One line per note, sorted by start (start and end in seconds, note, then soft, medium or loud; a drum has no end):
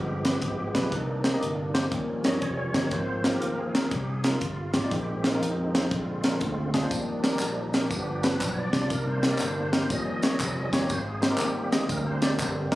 0.00 0.35 G1 medium
0.00 0.71 G2 medium
0.00 0.88 F3 medium
0.00 0.88 G#3 soft
0.00 0.88 B3 medium
0.00 0.77 G4 medium
0.25 0.35 G#3 medium
0.25 0.35 F4 medium
0.25 0.35 G4 medium
0.25 0.35 B4 medium
0.25 snare loud
0.25 closed hi-hat medium
0.42 0.70 G#1 loud
0.42 kick medium
0.42 closed hi-hat medium
0.74 0.90 B1 medium
0.74 0.80 G#3 medium
0.74 0.86 D4 medium
0.74 0.80 F4 medium
0.74 0.80 G4 medium
0.74 0.80 B4 medium
0.74 kick medium
0.74 snare loud
0.74 closed hi-hat medium
0.83 0.92 G#3 medium
0.83 0.92 F4 medium
0.83 0.92 G4 medium
0.83 0.92 B4 medium
0.88 1.70 C3 medium
0.88 0.92 D4 soft
0.92 1.34 C2 medium
0.92 1.88 D#3 soft
0.92 1.88 A#3 soft
0.92 1.89 D4 medium
0.92 1.39 D#4 medium
0.92 kick loud
0.92 closed hi-hat medium
1.24 1.30 A#3 medium
1.24 1.30 D#4 medium
1.24 1.30 G4 medium
1.24 1.30 C5 medium
1.24 snare loud
1.24 closed hi-hat medium
1.34 1.45 A#3 medium
1.34 1.45 D#4 medium
1.34 1.45 G4 medium
1.34 1.45 D#5 medium
1.42 1.84 G1 medium
1.42 closed hi-hat medium
1.74 1.84 A#3 medium
1.74 1.85 D#4 medium
1.74 1.85 G4 medium
1.74 1.84 C5 medium
1.74 snare loud
1.74 closed hi-hat medium
1.92 2.20 D#2 loud
1.92 2.71 D#3 medium
1.92 2.88 F3 medium
1.92 2.88 G3 medium
1.92 2.88 C#4 medium
1.92 kick loud
1.92 closed hi-hat medium
2.24 2.40 G2 medium
2.24 2.35 A#3 medium
2.24 2.35 D#4 medium
2.24 2.35 G4 medium
2.24 2.35 C#5 medium
2.24 2.42 D#5 loud
2.24 snare loud
2.24 closed hi-hat medium
2.42 2.70 F1 medium
2.42 2.94 C#5 loud
2.42 kick medium
2.42 closed hi-hat medium
2.74 2.89 G1 medium
2.74 2.80 A#3 medium
2.74 2.80 D#4 medium
2.74 2.80 G4 medium
2.74 2.80 C5 medium
2.74 kick medium
2.74 snare loud
2.74 closed hi-hat medium
2.85 2.93 A#3 medium
2.85 2.93 D#4 medium
2.85 2.93 G4 medium
2.85 2.93 C#5 medium
2.91 3.34 G#1 loud
2.91 3.72 G#2 medium
2.91 3.71 F3 soft
2.91 3.71 A#3 soft
2.91 3.71 C4 medium
2.91 3.27 C5 medium
2.91 kick loud
2.91 closed hi-hat medium
3.24 3.30 G#3 medium
3.24 3.30 D#4 medium
3.24 3.30 F4 medium
3.24 3.60 A#4 medium
3.24 3.30 C5 medium
3.24 snare loud
3.24 closed hi-hat medium
3.34 3.45 G#3 medium
3.34 3.45 D#4 medium
3.34 3.45 F4 medium
3.34 3.45 G4 medium
3.42 3.85 D#2 medium
3.42 closed hi-hat medium
3.60 3.93 G#4 medium
3.75 3.85 G#3 medium
3.75 3.85 D#4 medium
3.75 3.85 F4 medium
3.75 3.85 A#4 medium
3.75 snare loud
3.75 closed hi-hat medium
3.91 4.34 C2 loud
3.91 4.10 G4 medium
3.91 kick loud
3.91 closed hi-hat medium
4.10 4.26 G#4 medium
4.24 4.35 G#3 medium
4.24 4.35 D#4 medium
4.24 4.35 F4 medium
4.24 4.94 F4 loud
4.24 4.35 A#4 medium
4.24 snare loud
4.24 closed hi-hat medium
4.41 4.70 G1 medium
4.41 kick medium
4.41 closed hi-hat medium
4.74 4.89 G#1 medium
4.74 4.79 G#3 medium
4.74 4.79 D#4 medium
4.74 4.80 F4 medium
4.74 4.80 G4 medium
4.74 kick medium
4.74 snare loud
4.74 closed hi-hat medium
4.84 4.92 G#3 medium
4.84 4.92 D#4 medium
4.84 4.92 F4 medium
4.84 4.92 D5 medium
4.91 5.34 A#1 loud
4.91 5.71 A#2 medium
4.91 5.87 D#3 medium
4.91 5.88 G#3 soft
4.91 5.88 C4 medium
4.91 5.27 G4 medium
4.91 kick loud
4.91 closed hi-hat medium
5.24 5.30 G#3 medium
5.24 5.30 D#4 medium
5.24 5.43 F4 medium
5.24 5.31 F4 medium
5.24 5.30 A#4 medium
5.24 snare loud
5.24 closed hi-hat medium
5.35 5.45 G#3 medium
5.35 5.45 D#4 medium
5.35 5.45 F4 medium
5.35 5.45 A#4 medium
5.41 5.84 F2 medium
5.41 5.94 D#4 medium
5.41 closed hi-hat medium
5.75 5.84 G#3 medium
5.75 5.84 D#4 medium
5.75 5.85 F4 medium
5.75 5.84 C5 medium
5.75 snare loud
5.75 closed hi-hat medium
5.91 6.34 A#1 loud
5.91 6.70 A#2 medium
5.91 6.70 D3 medium
5.91 6.70 G#3 medium
5.91 6.70 C4 medium
5.91 6.70 F4 medium
5.91 kick loud
5.91 closed hi-hat medium
6.24 6.34 G#3 medium
6.24 6.34 D4 medium
6.24 6.34 F4 medium
6.24 6.34 A#4 medium
6.24 snare loud
6.24 closed hi-hat medium
6.41 6.84 D2 medium
6.41 kick medium
6.41 closed hi-hat medium
6.74 6.79 G#3 medium
6.74 6.79 D4 medium
6.74 6.79 F4 medium
6.74 6.79 G#4 medium
6.74 kick medium
6.74 snare loud
6.74 closed hi-hat medium
6.83 6.91 G#3 medium
6.83 6.92 D4 medium
6.83 6.91 F4 medium
6.83 6.91 C5 medium
6.90 7.34 D#2 medium
6.90 7.70 D#3 medium
6.90 7.69 F3 soft
6.90 7.70 G3 soft
6.90 7.70 D4 medium
6.90 kick loud
6.90 closed hi-hat medium
6.90 tambourine medium
7.23 7.29 G3 medium
7.23 7.29 D4 medium
7.23 7.29 D#4 medium
7.23 7.41 G4 medium
7.23 7.29 A#4 medium
7.23 snare loud
7.23 closed hi-hat medium
7.23 tambourine medium
7.33 7.44 G3 medium
7.33 7.44 D4 medium
7.33 7.44 D#4 medium
7.33 7.44 A#4 medium
7.39 7.83 A#1 medium
7.39 7.75 D#4 medium
7.39 clap medium
7.39 closed hi-hat medium
7.39 tambourine medium
7.73 7.84 G3 medium
7.73 7.84 D4 medium
7.73 7.84 D#4 medium
7.73 7.89 G4 medium
7.73 7.84 A#4 medium
7.73 snare loud
7.73 closed hi-hat medium
7.73 tambourine medium
7.90 8.33 G1 loud
7.90 8.70 G2 medium
7.90 8.69 F3 medium
7.90 8.69 B3 soft
7.90 8.69 D4 medium
7.90 8.25 G4 medium
7.90 kick loud
7.90 closed hi-hat medium
7.90 tambourine medium
8.23 8.33 G3 medium
8.23 8.33 D4 medium
8.23 8.33 F4 medium
8.23 8.54 B4 medium
8.23 8.33 B4 medium
8.23 snare loud
8.23 closed hi-hat medium
8.23 tambourine medium
8.41 8.69 B1 loud
8.41 kick medium
8.41 clap medium
8.41 closed hi-hat medium
8.41 tambourine loud
8.53 8.57 C#5 medium
8.59 8.92 D5 medium
8.73 8.88 C2 medium
8.73 8.78 G3 medium
8.73 8.78 D4 medium
8.73 8.78 F4 medium
8.73 8.78 D5 medium
8.73 kick medium
8.73 snare loud
8.73 closed hi-hat medium
8.73 tambourine medium
8.81 8.90 G3 medium
8.81 8.90 D4 medium
8.81 8.90 F4 medium
8.81 8.90 D5 medium
8.90 9.33 C2 medium
8.90 9.69 C3 medium
8.90 9.69 D#3 medium
8.90 9.69 A#3 soft
8.90 9.70 D4 medium
8.90 9.08 A#4 medium
8.90 kick loud
8.90 closed hi-hat medium
8.90 tambourine medium
9.07 9.23 C5 medium
9.22 9.28 A#3 medium
9.22 9.28 D#4 medium
9.22 9.28 G4 medium
9.22 9.41 A#4 medium
9.22 9.28 C5 medium
9.22 snare loud
9.22 closed hi-hat medium
9.22 tambourine medium
9.31 9.42 A#3 medium
9.31 9.42 D#4 medium
9.31 9.42 G4 medium
9.31 9.42 D5 medium
9.39 9.83 G1 medium
9.39 9.71 C5 medium
9.39 clap medium
9.39 closed hi-hat medium
9.39 tambourine medium
9.72 9.83 A#3 medium
9.72 9.83 D#4 medium
9.72 9.83 G4 medium
9.72 9.83 A#4 medium
9.72 9.91 C5 loud
9.72 snare loud
9.72 closed hi-hat medium
9.72 tambourine soft
9.90 10.33 D#2 medium
9.90 10.69 D#3 medium
9.90 10.86 F3 medium
9.90 10.86 G3 soft
9.90 10.86 C#4 medium
9.90 10.70 D#5 loud
9.90 kick loud
9.90 closed hi-hat medium
9.90 tambourine medium
10.22 10.33 A#3 medium
10.22 10.33 D#4 medium
10.22 10.33 G4 medium
10.22 10.33 C#5 medium
10.22 snare loud
10.22 closed hi-hat medium
10.22 tambourine medium
10.40 10.68 F1 medium
10.40 kick medium
10.40 clap medium
10.40 closed hi-hat medium
10.40 tambourine loud
10.73 10.87 G1 medium
10.73 10.78 A#3 medium
10.73 10.78 D#4 medium
10.73 10.78 G4 medium
10.73 10.78 C#5 medium
10.73 kick medium
10.73 snare loud
10.73 closed hi-hat medium
10.73 tambourine medium
10.82 10.90 A#3 medium
10.82 10.90 D#4 medium
10.82 10.90 G4 medium
10.82 10.90 C#5 medium
10.89 11.32 G#1 loud
10.89 11.68 G#2 medium
10.89 11.06 C5 loud
10.89 kick loud
10.89 closed hi-hat medium
10.89 tambourine medium
11.07 11.24 G#4 medium
11.21 12.75 G3 medium
11.21 11.27 G#3 medium
11.21 12.75 A#3 soft
11.21 12.75 C4 medium
11.21 11.27 D#4 medium
11.21 11.41 F4 medium
11.21 11.27 G4 medium
11.21 11.27 C5 medium
11.21 snare loud
11.21 closed hi-hat medium
11.21 tambourine medium
11.30 11.42 G#3 medium
11.30 11.42 D#4 medium
11.30 11.42 G4 medium
11.30 11.42 A#4 medium
11.38 11.83 D#2 medium
11.38 11.74 G4 medium
11.38 clap loud
11.38 closed hi-hat medium
11.38 tambourine medium
11.72 11.82 G#3 medium
11.72 11.82 D#4 medium
11.72 11.82 G4 medium
11.72 11.80 G#4 medium
11.72 11.82 D#5 medium
11.72 snare loud
11.72 closed hi-hat medium
11.72 tambourine soft
11.89 12.41 D2 loud
11.89 12.07 A#4 loud
11.89 kick loud
11.89 closed hi-hat medium
11.89 tambourine medium
12.06 12.23 C5 medium
12.22 12.32 G#3 medium
12.22 12.32 D#4 medium
12.22 12.32 G4 medium
12.22 12.49 C5 medium
12.22 12.33 D5 medium
12.22 snare loud
12.22 closed hi-hat medium
12.22 tambourine medium
12.39 12.67 G1 medium
12.39 kick medium
12.39 clap loud
12.39 closed hi-hat medium
12.39 tambourine loud
12.71 12.75 G#3 medium
12.71 12.75 D#4 medium
12.71 12.75 G4 medium
12.71 12.75 A#4 loud
12.71 kick medium
12.71 snare loud